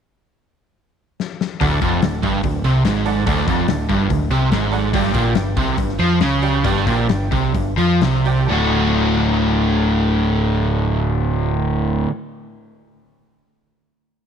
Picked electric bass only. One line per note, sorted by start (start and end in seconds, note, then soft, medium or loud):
1.61 1.80 D1 medium
1.82 2.01 F1 medium
2.02 2.22 D1 medium
2.23 2.43 G1 loud
2.44 2.63 D1 medium
2.65 2.84 C2 medium
2.86 3.25 G#1 medium
3.27 3.47 D1 medium
3.47 3.67 F1 medium
3.69 3.88 D1 medium
3.90 4.09 G1 medium
4.10 4.30 D1 medium
4.31 4.51 C2 medium
4.52 4.91 G#1 medium
4.94 5.14 G1 medium
5.15 5.35 A#1 medium
5.35 5.55 G1 medium
5.57 5.77 C2 medium
5.78 5.98 G1 medium
6.00 6.20 F2 medium
6.21 6.62 C#2 medium
6.64 6.85 G1 medium
6.87 7.08 A#1 medium
7.10 7.31 G1 medium
7.31 7.53 C2 medium
7.55 7.76 G1 medium
7.77 8.00 F2 medium
8.02 8.47 C2 medium
8.50 12.04 D1 medium